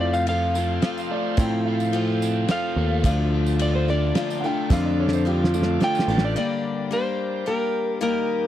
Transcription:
0.00 0.79 F2 medium
0.00 1.11 F2 medium
0.00 0.27 F3 medium
0.00 1.09 A3 medium
0.00 0.27 C4 medium
0.00 0.54 C4 medium
0.00 0.28 F4 medium
0.00 3.02 F4 medium
0.00 0.29 A4 medium
0.00 3.01 A4 medium
0.00 3.01 C5 medium
0.00 0.14 D5 medium
0.13 0.27 F5 medium
0.13 tambourine medium
0.27 0.55 F3 medium
0.27 0.55 C4 medium
0.27 0.83 F4 medium
0.27 0.55 F4 medium
0.27 0.54 A4 medium
0.27 1.91 F5 medium
0.27 ride medium
0.55 1.94 C4 medium
0.55 0.82 C4 soft
0.55 0.83 F4 soft
0.55 0.82 A4 soft
0.55 tambourine medium
0.82 1.36 F3 medium
0.82 1.37 C4 medium
0.82 1.93 F4 medium
0.82 1.38 F4 medium
0.82 1.38 A4 medium
0.82 snare medium
0.82 ride medium
0.82 tambourine soft
0.98 tambourine medium
1.10 1.66 A3 medium
1.10 1.38 D5 medium
1.37 2.77 F2 medium
1.37 2.45 A2 loud
1.37 1.92 F3 medium
1.37 1.93 C4 loud
1.37 1.94 F4 medium
1.37 1.94 A4 loud
1.37 1.65 G5 medium
1.37 kick loud
1.37 ride medium
1.37 tambourine medium
1.66 2.78 A3 medium
1.66 1.93 F5 medium
1.80 tambourine medium
1.93 2.48 F3 medium
1.93 2.48 C4 medium
1.93 2.49 F4 medium
1.93 2.50 A4 medium
1.93 ride medium
2.22 3.05 C4 medium
2.22 tambourine medium
2.48 3.04 F3 medium
2.48 3.05 C4 medium
2.48 3.05 F4 medium
2.48 3.61 F4 medium
2.48 3.06 A4 medium
2.48 3.58 F5 loud
2.48 snare medium
2.48 ride medium
2.48 tambourine soft
2.76 3.04 D#2 medium
2.76 3.33 A3 medium
3.04 4.11 D2 loud
3.04 4.43 D3 medium
3.04 4.70 D3 medium
3.04 3.59 F3 medium
3.04 3.60 D4 medium
3.04 6.34 F4 medium
3.04 3.60 F4 medium
3.04 6.33 A4 medium
3.04 3.61 A4 medium
3.04 6.33 D5 medium
3.04 kick loud
3.04 ride medium
3.04 tambourine medium
3.33 4.44 A3 medium
3.46 tambourine medium
3.59 3.88 F3 medium
3.59 3.88 D4 medium
3.59 4.15 F4 medium
3.59 3.88 F4 medium
3.59 3.87 A4 medium
3.59 3.75 D5 medium
3.59 ride medium
3.76 3.88 C5 medium
3.88 5.27 D4 medium
3.88 4.16 D4 soft
3.88 4.16 F4 soft
3.88 4.16 A4 soft
3.88 4.43 D5 medium
4.15 4.43 F3 medium
4.15 4.44 D4 medium
4.15 5.25 F4 medium
4.15 4.44 F4 medium
4.15 4.43 A4 medium
4.15 snare medium
4.15 ride medium
4.15 tambourine soft
4.30 tambourine medium
4.40 4.70 A4 medium
4.40 4.44 F#5 medium
4.45 4.99 A3 medium
4.45 4.70 D4 soft
4.45 4.70 F4 soft
4.45 4.71 G5 loud
4.70 5.77 F2 loud
4.70 5.26 D3 medium
4.70 6.09 D3 medium
4.70 5.24 F3 loud
4.70 5.25 D4 medium
4.70 5.25 F4 medium
4.70 5.26 A4 loud
4.70 4.85 F5 medium
4.70 kick loud
4.70 snare medium
4.70 tambourine medium
4.86 4.98 D5 medium
5.00 6.07 A3 medium
5.00 5.12 C#5 medium
5.08 snare medium
5.13 5.26 C5 medium
5.13 tambourine medium
5.25 5.79 F3 medium
5.25 5.80 D4 medium
5.25 5.80 F4 medium
5.25 5.40 G4 medium
5.25 5.81 A4 medium
5.42 5.54 F4 medium
5.42 snare medium
5.53 6.19 A3 medium
5.53 6.36 D4 medium
5.53 6.22 F4 medium
5.53 tambourine medium
5.62 snare medium
5.80 6.08 F3 medium
5.80 6.09 D4 medium
5.80 6.36 F4 medium
5.80 6.09 F4 medium
5.80 6.07 A4 medium
5.80 6.25 G5 loud
5.80 snare medium
5.95 tambourine medium
5.99 snare medium
6.08 6.35 A1 medium
6.08 6.36 A3 medium
6.08 6.36 D4 medium
6.08 6.37 F4 medium
6.08 6.36 A4 medium
6.08 tambourine soft
6.18 snare loud
6.25 6.37 D5 medium
6.35 6.92 G2 medium
6.35 6.91 D3 medium
6.35 6.90 G3 medium
6.35 6.92 A#3 medium
6.35 6.91 D4 medium
6.35 7.99 G4 medium
6.35 6.93 G4 medium
6.35 8.00 A#4 medium
6.35 7.99 D5 medium
6.35 6.94 D5 loud
6.91 7.45 G3 medium
6.91 7.45 A#3 medium
6.91 7.46 D4 medium
6.91 7.46 G4 medium
6.91 7.49 C5 medium
7.46 8.00 G3 medium
7.46 8.00 A#3 medium
7.46 8.02 D4 medium
7.46 8.01 G4 medium
7.46 7.98 A#4 medium
8.01 8.47 D#3 medium
8.01 8.47 G3 medium
8.01 8.47 A#3 medium
8.01 8.47 D#4 medium
8.01 8.47 G4 medium
8.01 8.47 A#4 medium
8.01 8.47 A#4 loud
8.01 8.47 D#5 medium

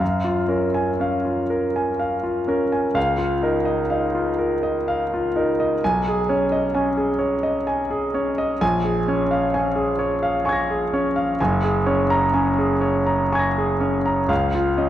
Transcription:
0.00 2.91 F#2 soft
0.00 0.40 F5 soft
0.24 0.66 F4 soft
0.48 0.90 C#4 soft
0.48 0.90 A#4 soft
0.74 1.15 G#5 soft
1.00 1.41 C#4 soft
1.00 1.41 F5 soft
1.25 1.66 F4 soft
1.50 1.91 A#4 soft
1.76 2.16 G#5 soft
1.99 2.39 F5 soft
2.23 2.63 F4 soft
2.48 2.86 C#4 soft
2.48 2.86 A#4 soft
2.72 2.96 G#5 soft
2.95 5.77 C#2 soft
2.95 3.33 F5 medium
3.18 3.56 F4 soft
3.42 3.81 D#4 soft
3.42 3.81 A#4 soft
3.65 4.04 D#5 soft
3.90 4.29 D#4 soft
3.90 4.29 F5 soft
4.15 4.53 F4 soft
4.38 4.77 A#4 soft
4.63 5.01 D#5 soft
4.88 5.26 F5 soft
5.14 5.50 F4 soft
5.36 5.73 D#4 soft
5.36 5.73 A#4 soft
5.60 5.82 D#5 soft
5.84 8.59 B1 soft
5.84 6.20 G#5 medium
6.08 6.43 G#4 soft
6.29 6.65 C#4 soft
6.29 6.65 C#5 soft
6.52 6.88 D#5 soft
6.75 7.11 C#4 soft
6.75 7.10 G#5 soft
6.97 7.34 G#4 soft
7.19 7.57 C#5 soft
7.43 7.81 D#5 soft
7.67 8.05 G#5 soft
7.90 8.29 G#4 soft
8.14 8.52 C#4 soft
8.14 8.53 C#5 soft
8.38 8.62 D#5 soft
8.61 11.35 A#1 medium
8.61 8.99 G#5 medium
8.84 9.22 G#4 soft
9.08 9.45 C#4 soft
9.08 9.45 C#5 soft
9.31 9.68 F5 soft
9.54 9.91 C#4 soft
9.54 9.91 G#5 soft
9.76 10.13 G#4 soft
9.99 10.36 C#5 soft
10.23 10.60 F5 soft
10.45 10.83 G#5 soft
10.45 11.35 C#6 soft
10.49 11.37 G#6 soft
10.49 11.39 A#6 soft
10.70 11.07 G#4 soft
10.93 11.30 C#4 soft
10.93 11.31 C#5 soft
11.16 11.39 F5 soft
11.40 14.27 F#1 medium
11.40 11.78 G#5 medium
11.64 12.01 G#4 soft
11.86 12.25 C#4 soft
11.86 12.25 C#5 soft
12.10 12.49 A#5 medium
12.34 12.73 C#4 soft
12.34 12.73 G#5 soft
12.58 12.98 G#4 soft
12.81 13.22 C#5 soft
13.06 13.46 A#5 soft
13.32 13.72 G#5 soft
13.32 14.26 C#6 soft
13.32 14.28 G#6 soft
13.39 14.29 A#6 soft
13.58 13.97 G#4 soft
13.80 14.20 C#4 soft
13.80 14.20 C#5 soft
14.06 14.30 A#5 soft
14.28 14.89 C#2 medium
14.28 14.69 F5 medium
14.55 14.89 F4 soft
14.77 14.89 C#4 soft
14.77 14.89 D#5 soft

